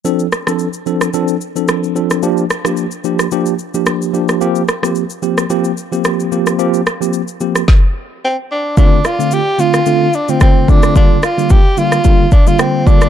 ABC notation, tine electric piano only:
X:1
M:4/4
L:1/16
Q:"Swing 16ths" 1/4=110
K:Dm
V:1 name="Tine electric piano"
[F,CDA] z2 [F,CDA] z2 [F,CDA] z [F,CDA] z2 [F,CDA]3 [F,CDA]2 | [F,B,DG] z2 [F,B,DG] z2 [F,B,DG] z [F,B,DG] z2 [F,B,DG]3 [F,B,DG]2 | [F,B,CG] z2 [F,B,CG] z2 [F,B,CG] z [F,B,CG] z2 [F,B,CG]3 [F,B,CG]2 | [F,B,CG] z2 [F,B,CG] z2 [F,B,CG] z8 z |
[D,A,CF] z2 [D,A,CF] z2 [D,A,CF] z [D,A,CF] z2 [D,A,CF]3 [D,A,CF]2 | [D,G,B,F] z2 [D,G,B,F] z2 [D,G,B,F] z [D,G,B,F] z2 [D,G,B,F]3 [D,G,B,F]2 |]